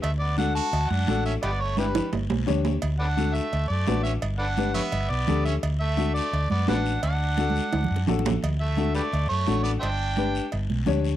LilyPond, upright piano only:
\new Staff \with { instrumentName = "Upright piano" } { \time 4/4 \key d \major \tempo 4 = 172 r4 <d' fis' a'>8 r4. <d' fis' a'>8 r8 | r4 <d' g' b'>8 r4. <d' g' cis''>8 r8 | r4 <d' fis' a'>8 r4. <d' fis' b'>8 r8 | r4 <d' g' b'>8 r4. <d' g' a'>8 r8 |
r4 <d' fis' a'>8 r4. <d' fis' b'>8 r8 | r4 <d' fis' a'>8 r4. <d' fis' a'>8 r8 | r4 <d' fis' a'>8 r4. <d' fis' a'>8 r8 | r4 <d' g' b'>8 r4. <d' g' cis''>8 r8 | }